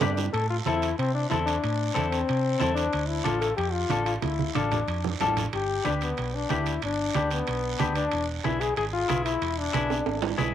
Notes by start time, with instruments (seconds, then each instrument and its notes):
0.01 fingered electric bass G2, clean electric guitar D4 G4 B4, high conga, high timbale, short guiro
0.17 low timbale, short guiro
0.33 fingered electric bass A2, trombone A4, high conga, high timbale, long guiro
0.50 trombone F4
0.66 fingered electric bass E2, clean electric guitar C4 E4 A4, trombone E4, high conga, high timbale, short guiro
0.82 high timbale, short guiro
0.98 fingered electric bass C3, trombone C4, high conga, high timbale, long guiro
1.14 trombone D4
1.30 fingered electric bass E2, clean electric guitar C4 E4 A4, trombone E4, high conga, high timbale, short guiro
1.46 trombone D4, high timbale, short guiro
1.64 fingered electric bass A2, high conga, high timbale, long guiro
1.94 fingered electric bass E2, clean electric guitar C4 E4 A4, high conga, high timbale, short guiro
2.11 trombone C4, high timbale, short guiro
2.28 fingered electric bass C3, high conga, high timbale, long guiro
2.59 fingered electric bass E2, clean electric guitar C4 E4 A4, high conga, high timbale, low timbale, short guiro
2.75 trombone D4, high timbale, short guiro
2.93 fingered electric bass D2, high conga, high timbale, long guiro
3.08 trombone E4
3.24 fingered electric bass A1, clean electric guitar D4 F4 A4, trombone F4, high conga, high timbale, short guiro
3.41 trombone A4, high timbale, short guiro
3.57 fingered electric bass F2, trombone G4, high conga, high timbale, long guiro
3.72 trombone F4
3.90 fingered electric bass A1, clean electric guitar D4 F4 A4, high conga, high timbale, short guiro
4.05 trombone F4, high timbale, short guiro
4.22 fingered electric bass D2, trombone E4, high conga, high timbale, long guiro
4.39 high conga
4.55 fingered electric bass A1, trombone D4, clean electric guitar D4 F4 A4, high conga, high timbale, short guiro
4.71 trombone D4, low conga, high timbale, short guiro
4.88 fingered electric bass F2, high timbale, long guiro
5.04 low conga
5.20 fingered electric bass A1, clean electric guitar D4 F4 A4, low conga, high timbale, low timbale, short guiro
5.37 low conga, high timbale, short guiro
5.53 fingered electric bass G1, trombone G4, high conga, high timbale, long guiro
5.85 fingered electric bass D2, clean electric guitar D4 G4 B4, trombone D4, high conga, high timbale, short guiro
6.01 trombone B3, high timbale, short guiro
6.17 fingered electric bass B1, high conga, high timbale, long guiro
6.35 trombone D4
6.49 fingered electric bass D2, clean electric guitar D4 G4 B4, trombone E4, high conga, high timbale, short guiro
6.66 high timbale, short guiro
6.82 fingered electric bass G1, trombone D4, high conga, high timbale, long guiro
7.14 fingered electric bass D2, clean electric guitar D4 G4 B4, high conga, high timbale, short guiro
7.30 trombone B3, high timbale, short guiro
7.47 fingered electric bass B1, high conga, high timbale, long guiro
7.79 fingered electric bass D2, clean electric guitar D4 G4 B4, high conga, high timbale, short guiro
7.95 trombone D4, high timbale, short guiro
8.11 fingered electric bass E1, high conga, high timbale, long guiro
8.44 fingered electric bass B1, clean electric guitar E4 G#4 B4, trombone E4, high conga, high timbale, short guiro
8.61 trombone G#4, high timbale, short guiro
8.76 fingered electric bass G#1, trombone G#4, high conga, high timbale, long guiro
8.93 trombone F4
9.08 fingered electric bass B1, clean electric guitar E4 G#4 B4, high conga, high timbale, short guiro
9.25 trombone E4, high timbale, short guiro
9.42 fingered electric bass E1, high conga, high timbale, long guiro
9.58 trombone D4
9.73 fingered electric bass B1, clean electric guitar E4 G#4 B4, high conga, high timbale, short guiro
9.90 high timbale, short guiro
10.06 fingered electric bass G#1, high conga, high timbale, long guiro
10.22 low timbale
10.38 fingered electric bass B1, clean electric guitar E4 G#4 B4, high conga, low timbale, short guiro